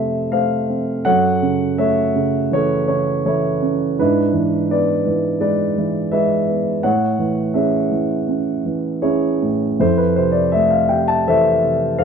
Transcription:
grand piano
Already playing: F2 C3 A3 C4 E4 A4 C5 E5
0.31 A3 A4 C5 F5
0.69 C4
1.05 F#2 A4 C#5 F#5
1.42 C#3
1.78 A3 A4 C#5 E5
2.15 C#3
2.51 E3 E4 A4 C#5
2.88 C#3 C#5
3.25 E3 E4 A4 C#5
3.62 C#4
3.99 G#2 D4 E4 B4
4.33 E3
4.69 B3 B4 D5
5.06 E3
5.41 G#3 B4 D5
5.78 E3
6.12 G#3 B4 E5
6.48 B3
6.83 A2 C#5 F#5
7.19 E3
7.54 C#4 G#4 C#5 E5
7.91 E3
8.28 C#4
8.65 E3
9.02 C#4 E4 G#4 C#5
9.42 A2
9.80 F2 E4 A4 C5
9.97 B4
10.16 C3 C5
10.32 D5
10.52 A3 E5
10.70 F5
10.89 C3 G5
11.08 A5
11.27 E3 A4 C5 E5
11.63 C3
11.98 E3 A4 C5 F5

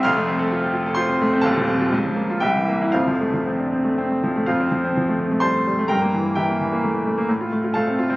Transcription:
grand piano
0.03 F1 F2 F5 C6 F6
0.17 A3
0.28 C4
0.39 A4
0.52 F4
0.63 G4
0.74 F4
0.86 A4
0.95 F4 C5 C6
1.09 C4
1.21 A3
1.33 C4
1.42 D#1 D#2 A4 F5 A5
1.57 F3
1.68 C4
1.80 F4
1.92 C#2
2.05 F3
2.17 A#3
2.30 F4
2.40 C2 G4 E5 G5
2.56 E3
2.68 A#3
2.82 E4
2.92 F1 F2 F4 C5 F5
3.07 F3
3.21 A3
3.33 F3
3.46 C4
3.60 D4
3.73 C4
3.84 A3
3.98 C4
4.10 A3
4.23 F3
4.36 A3
4.46 F2 F4 C5 F5
4.60 C4
4.71 F3
4.84 C4
4.97 F3
5.08 A3
5.20 C4
5.31 A3
5.40 G3 C5 A5 C6
5.54 A3
5.67 G3
5.79 A3
5.88 G2 A#4 G5 A#5
6.02 A#3
6.14 E3
6.25 A#3
6.35 E3 G4 E5 G5
6.49 A#3
6.61 E3
6.73 A#3
6.84 A3
6.95 A#3
7.06 A3
7.18 A#3
7.29 A2
7.41 F4
7.52 A3
7.64 F4
7.74 A3 A4 F5 A5
7.88 C4
7.99 F4
8.10 C4

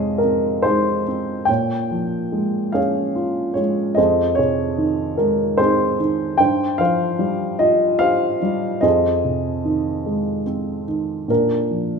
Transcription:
grand piano
Already playing: F2 C3 G#3 G#4 C5 C#5 D#5 F5
0.18 A#4
0.24 C4
0.62 G#3 D#4 G#4 C5
1.07 C4
1.45 A#2 C#5 G5
1.91 F3
2.32 G#3
2.72 C#4 G#4 C#5 F5
3.15 F4
3.54 G#3 C#5
3.95 F2 G#4 C5 D#5
4.35 C3 G#4 C#5
4.78 D#3
5.17 G#3 A#4
5.58 C4 D#4 G#4 C5
6.00 D#3
6.38 G2 C5 G5
6.78 F3 C5 F5
7.19 G3
7.59 F4 D#5
7.99 G4 C5 F5
8.43 G3
8.81 F2 G#4 C5 D#5
9.24 C3
9.65 D#3
10.06 G#3
10.46 C4
10.88 D#3
11.28 A#2 D4 A#4
11.70 F3

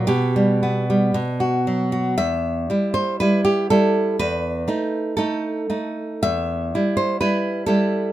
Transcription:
nylon-string guitar
0.07 B2 G4
0.36 G3
0.63 B3
0.90 G3
1.14 B2
1.40 F#4
1.67 F#3
1.92 F#4
2.18 E2 E5
2.70 G3 E4
2.94 C5
3.20 G3 E4 B4
3.45 G4
3.70 G3 E4 A4
4.19 E2 B4
4.68 A3 D#4
5.17 A3 D#4 A4
5.70 A3 D#4
6.23 E2 E5
6.75 G3 E4
6.97 C5
7.21 G3 E4 B4
7.66 G3 E4 A4

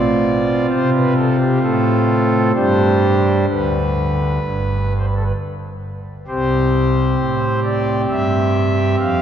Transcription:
pipe organ
Already playing: B2 C4 F4 D5
0.70 C3 C5
0.94 B4
1.17 A4
1.40 G4
1.63 A2 A4
2.54 G2 G3 D4 G4 C5
3.49 D2 D3 B4
4.43 G1 G2
4.98 C5
5.06 B4
5.16 A4
5.24 B4
6.27 C2 C3 C4 G4 C5
7.18 A2
7.64 D5
8.09 G2 E5
9.00 F2 F5

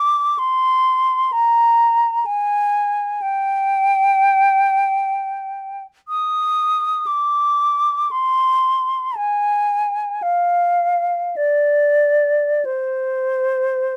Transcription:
flute
Already playing: D6
0.39 C6
1.32 A#5
2.26 G#5
3.22 G5
6.08 D#6
7.07 D6
8.11 C6
9.17 G#5
10.23 F5
11.36 D5
12.65 C5

